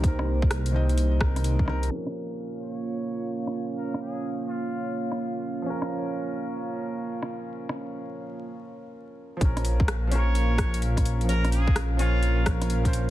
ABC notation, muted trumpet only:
X:1
M:4/4
L:1/8
Q:"Swing 16ths" 1/4=128
K:Bbdor
V:1 name="Muted trumpet"
z8 | z3 d3 z2 | B A z F2 z3 | z8 |
z8 | z3 d3 z2 | B A z F2 z3 |]